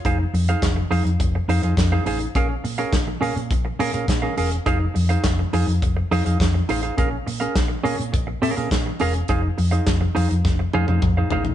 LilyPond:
<<
  \new Staff \with { instrumentName = "Clean electric guitar" } { \time 4/4 \key bes \minor \tempo 4 = 104 <ees' aes' c'' f''>16 r8 <ees' aes' c'' f''>16 r8 <ees' aes' c'' f''>16 r8. <ees' aes' c'' f''>16 <ees' aes' c'' f''>16 r16 <ees' aes' c'' f''>16 <ees' aes' c'' f''>16 r16 | <des' aes' bes' f''>16 r8 <des' aes' bes' f''>16 r8 <des' aes' bes' f''>16 r8. <des' aes' bes' f''>16 <des' aes' bes' f''>16 r16 <des' aes' bes' f''>16 <des' aes' bes' f''>16 r16 | <ees' aes' c'' f''>16 r8 <ees' aes' c'' f''>16 r8 <ees' aes' c'' f''>16 r8. <ees' aes' c'' f''>16 <ees' aes' c'' f''>16 r8 <ees' aes' c'' f''>16 <ees' aes' c'' f''>16 | <des' aes' bes' f''>16 r8 <des' aes' bes' f''>16 r8 <des' aes' bes' f''>16 r8. <des' aes' bes' f''>16 <des' aes' bes' f''>16 r8 <des' aes' bes' f''>16 r16 |
<ees' aes' c'' f''>16 r8 <ees' aes' c'' f''>16 r8 <ees' aes' c'' f''>16 r8. <ees' aes' c'' f''>16 <ees' aes' c'' f''>16 r16 <ees' aes' c'' f''>16 <ees' aes' c'' f''>16 r16 | }
  \new Staff \with { instrumentName = "Fingered electric bass" } { \clef bass \time 4/4 \key bes \minor f,,8 f,8 f,,8 f,16 f,16 f,,8 f,16 f,16 f,8 a,,8 | bes,,8 bes,8 bes,,8 bes,16 bes,16 bes,,8 bes,16 bes,16 bes,8 e,,8 | f,,8 f,8 f,,8 f,16 f,16 f,,8 f,16 f,16 f,8 a,,8 | bes,,8 bes,8 bes,,8 bes,16 bes,16 bes,,8 bes,16 bes,16 bes,8 e,,8 |
f,,8 f,8 f,,8 f,16 f,16 f,,8 f,16 f,16 f,8 a,,8 | }
  \new DrumStaff \with { instrumentName = "Drums" } \drummode { \time 4/4 <hh bd>8 hho16 hh16 <hc hh bd sn>8 hho16 hh16 <hh bd>8 hho16 hh16 <hc hh bd sn>8 hho16 hh16 | <hh bd>8 hho16 hh16 <hc hh bd sn>8 hho16 hh16 <hh bd>8 hho16 hh16 <hc hh bd sn>8 hho16 hh16 | <hh bd>8 hho16 hh16 <hc hh bd sn>8 hho16 hh16 <hh bd>8 hho16 hh16 <hc hh bd sn>8 hho16 hh16 | <hh bd>8 hho16 hh16 <hc hh bd sn>8 hho16 hh16 <hh bd>8 hho16 hh16 <hc hh bd sn>8 hho16 hh16 |
<hh bd>8 hho16 hh16 <hc hh bd sn>8 hho16 hh16 <bd sn>8 tommh16 tommh16 <bd toml>8 tomfh16 tomfh16 | }
>>